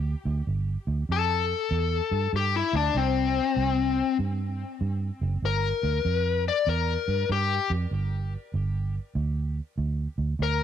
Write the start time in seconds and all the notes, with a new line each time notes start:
Already playing: D2
0.25 D2
0.47 G1
0.87 D2
1.09 F2 A4
1.71 E2
2.11 G2
2.33 G2 G4
2.56 E4
2.73 D2 D4
2.95 C2 C4
3.56 C2
4.19 G2
4.81 G2
5.21 F#1
5.42 G1 A#4
5.83 D2
6.05 F2
6.48 D5
6.67 E2 A#4
7.08 G2
7.29 G2 G4
7.70 F2
7.91 G1
8.54 G1
9.15 D2
9.78 D2
10.18 D2
10.39 D2 A#4